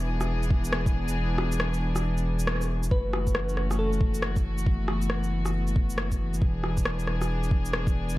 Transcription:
Already playing: sub bass E1, string section E3 B3 D4 G#4, synth texture E3 E4
0.21 cross-stick, shaker
0.43 shaker
0.51 kick
0.65 shaker
0.72 cross-stick
0.86 kick, shaker
1.08 shaker
1.38 cross-stick
1.52 shaker
1.60 cross-stick
1.74 shaker
1.96 cross-stick, shaker
2.17 shaker
2.39 shaker
2.47 cross-stick
2.61 shaker
2.83 shaker
2.91 sub bass F#1, string section E3 A3 C#4 F#4, fm electric piano B4, kick
3.13 cross-stick
3.27 kick, shaker
3.35 cross-stick
3.49 shaker
3.57 cross-stick
3.71 cross-stick, shaker
3.79 fm electric piano A4
3.93 shaker
4.01 kick
4.14 shaker
4.22 cross-stick
4.36 kick, shaker
4.58 shaker
4.66 string section B3, kick
4.88 cross-stick
5.02 shaker
5.10 cross-stick
5.24 shaker
5.46 cross-stick, shaker
5.67 shaker
5.76 kick
5.90 shaker
5.98 cross-stick
6.12 kick, shaker
6.34 shaker
6.41 sub bass E1, string section D4 G#4, kick
6.64 cross-stick
6.77 kick, shaker
6.85 cross-stick
6.99 shaker
7.07 cross-stick
7.22 cross-stick, shaker
7.43 shaker
7.51 kick
7.65 shaker
7.73 cross-stick
7.87 kick, shaker
8.09 shaker

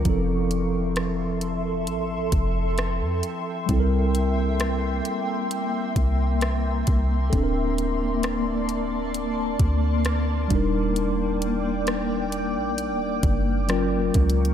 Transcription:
0.02 808-style bass F1, tine electric piano F3 C4, ambient pad A4 E5 C6, kick, closed hi-hat
0.07 tine electric piano E4 A4
0.51 closed hi-hat
0.96 cross-stick, closed hi-hat
1.41 closed hi-hat
1.87 808-style bass A1, ambient pad G5, closed hi-hat
2.32 808-style bass F1, kick, closed hi-hat
2.78 cross-stick, closed hi-hat
3.01 808-style bass F2
3.23 closed hi-hat
3.66 808-style bass C2, tine electric piano G3 C4, ambient pad A#3, kick, closed hi-hat
3.71 tine electric piano E4 A4
3.80 tine electric piano A#4
4.15 closed hi-hat
4.60 cross-stick, closed hi-hat
5.05 closed hi-hat
5.51 closed hi-hat
5.96 808-style bass C2, kick, closed hi-hat
6.41 cross-stick, closed hi-hat
6.87 808-style bass C2, kick, closed hi-hat
7.30 808-style bass D1, tine electric piano C4 A4, ambient pad D5 A5, kick, closed hi-hat
7.35 tine electric piano D4 A4
7.44 tine electric piano A#4
7.78 closed hi-hat
8.23 cross-stick, closed hi-hat
8.69 closed hi-hat
9.14 closed hi-hat
9.60 808-style bass D2, kick, closed hi-hat
10.05 cross-stick, closed hi-hat
10.48 808-style bass D#1, tine electric piano G3 D4, ambient pad D5 G5 D6, kick, closed hi-hat
10.53 tine electric piano D#4 A#4
10.96 closed hi-hat
11.42 closed hi-hat
11.87 cross-stick, closed hi-hat
12.32 closed hi-hat
12.56 808-style bass A#1
12.78 closed hi-hat
12.90 808-style bass D#1
13.23 808-style bass F#1, kick, closed hi-hat
13.68 tine electric piano F#3 C#4 F4 A#4, cross-stick, closed hi-hat
14.14 808-style bass C#2, kick, closed hi-hat
14.30 closed hi-hat
14.45 closed hi-hat

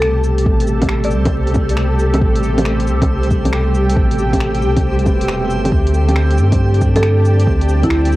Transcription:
Already playing: sub bass C2, tine electric piano B2 C3 A3 G4 A4, ambient pad G4 A4 A5, marimba A4, synth texture C5
0.02 finger snap
0.24 cabasa
0.38 closed hi-hat
0.44 sub bass A1, tine electric piano B2 C3 A3 G4, kick
0.60 closed hi-hat
0.67 cabasa
0.78 tine electric piano C3 A3, closed hi-hat, low bongo
0.83 tine electric piano B2 G4, kick
0.89 finger snap
1.04 marimba D5, closed hi-hat
1.11 sub bass C2, cabasa
1.25 kick, closed hi-hat, low bongo
1.47 closed hi-hat
1.51 tine electric piano C3 A3, low bongo, cabasa
1.56 tine electric piano B2 A4, kick
1.69 closed hi-hat
1.77 finger snap
1.99 cabasa
2.14 closed hi-hat, low bongo
2.20 sub bass A1, tine electric piano B2 C3 A3 G4, ambient pad G5, kick
2.36 closed hi-hat
2.43 cabasa
2.53 tine electric piano C3 A3
2.58 tine electric piano B2 G4, closed hi-hat, low bongo
2.65 finger snap
2.80 closed hi-hat
2.87 sub bass C2, cabasa
3.02 kick, closed hi-hat, low bongo
3.23 tine electric piano C3, closed hi-hat
3.30 tine electric piano B2 A3, kick, cabasa
3.35 tine electric piano A4
3.45 closed hi-hat, low bongo
3.53 finger snap
3.75 cabasa
3.89 closed hi-hat
3.95 sub bass A1, tine electric piano B2 C3 A3, kick
3.99 tine electric piano G4
4.11 closed hi-hat
4.18 cabasa
4.30 tine electric piano C3 A3, kick, closed hi-hat, low bongo
4.35 tine electric piano B2 G4
4.40 finger snap
4.55 closed hi-hat
4.62 sub bass C2, cabasa
4.77 kick, closed hi-hat, low bongo
4.99 closed hi-hat
5.05 sub bass E1, tine electric piano B2 C3 A3 B4, kick, low bongo, cabasa
5.21 closed hi-hat
5.28 finger snap
5.41 tine electric piano B2 C3 A3 G4
5.50 sub bass G1, cabasa
5.65 closed hi-hat, low bongo
5.71 sub bass D2, tine electric piano D3 A3 C4, ambient pad G4 D5 G5 A5, kick
5.75 tine electric piano G4
5.87 closed hi-hat
5.94 cabasa
6.05 tine electric piano D3 A3, closed hi-hat, low bongo
6.10 tine electric piano C4 G4
6.16 finger snap
6.31 closed hi-hat
6.38 sub bass G2, cabasa
6.52 kick, closed hi-hat, low bongo
6.74 tine electric piano D3, closed hi-hat
6.80 tine electric piano A3 C4, kick, cabasa
6.86 tine electric piano A4
6.96 marimba A4, closed hi-hat, low bongo
7.03 finger snap
7.25 cabasa
7.40 closed hi-hat
7.46 sub bass D2, tine electric piano D3 A3 C4, kick
7.50 tine electric piano G4
7.61 closed hi-hat
7.69 cabasa
7.79 tine electric piano D3 A3
7.83 tine electric piano C4, marimba E4, kick, closed hi-hat, low bongo
7.88 tine electric piano G4, finger snap
8.05 closed hi-hat
8.12 cabasa

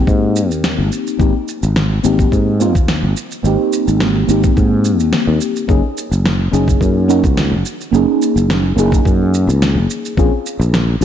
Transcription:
Already playing: fm electric piano A#3 C4 D#4 G4
0.07 fretless electric bass G#2, kick, shaker
0.36 shaker
0.51 fretless electric bass D#2, shaker
0.64 snare, shaker
0.78 fretless electric bass G#1
0.92 shaker
1.07 shaker
1.19 fretless electric bass G#1, fm electric piano A#3 C4 D#4 G4, kick, shaker
1.48 shaker
1.63 fretless electric bass G#1, shaker
1.76 snare, shaker
2.03 fretless electric bass G#1, fm electric piano A#3 C4 D#4 G4, shaker
2.19 kick, shaker
2.32 fretless electric bass G#2, kick, shaker
2.60 fm electric piano A#3 C4 D#4 F4, shaker
2.75 fretless electric bass D#2, kick, shaker
2.88 snare, shaker
3.03 fretless electric bass G#1
3.17 shaker
3.32 shaker
3.43 fretless electric bass G#1, fm electric piano A#3 C4 D#4 G4, shaker
3.73 shaker
3.88 fretless electric bass G#1, shaker
4.00 snare, shaker
4.27 fretless electric bass G#1, fm electric piano A#3 C4 D#4 G4, shaker
4.44 kick, shaker
4.57 fretless electric bass G#2, kick, shaker
4.85 shaker
5.00 fretless electric bass D#2, shaker
5.13 snare, shaker
5.27 fretless electric bass D#2
5.41 shaker
5.56 shaker
5.68 fretless electric bass F#1, fm electric piano A#3 C#4 D#4 G#4, kick, shaker
5.98 shaker
6.11 fretless electric bass F#1, shaker
6.26 snare, shaker
6.52 fretless electric bass F#1, fm electric piano A#3 C#4 D#4 G#4, shaker
6.68 kick, shaker
6.81 fretless electric bass F#2, kick, shaker
7.08 fm electric piano A#3 C#4 D#4 F#4, shaker
7.24 fretless electric bass C#2, kick, shaker
7.37 snare, shaker
7.52 fretless electric bass F#1
7.66 shaker
7.81 shaker
7.91 fretless electric bass F#1, fm electric piano A#3 C#4 D#4 G#4, shaker
8.22 shaker
8.36 fretless electric bass F#1, shaker
8.50 snare, shaker
8.76 fretless electric bass F#1, fm electric piano A#3 C#4 D#4 G#4, shaker
8.92 kick, shaker
9.05 fretless electric bass F#2, kick, shaker
9.34 shaker
9.47 fretless electric bass C#2, shaker
9.62 snare, shaker
9.75 fretless electric bass F#1
9.90 shaker
10.05 shaker
10.17 fretless electric bass A#1, fm electric piano C4 C#4 F4 G#4, kick, shaker
10.46 shaker
10.60 fretless electric bass A#1, shaker
10.74 snare, shaker
11.01 fretless electric bass A#1, fm electric piano C4 C#4

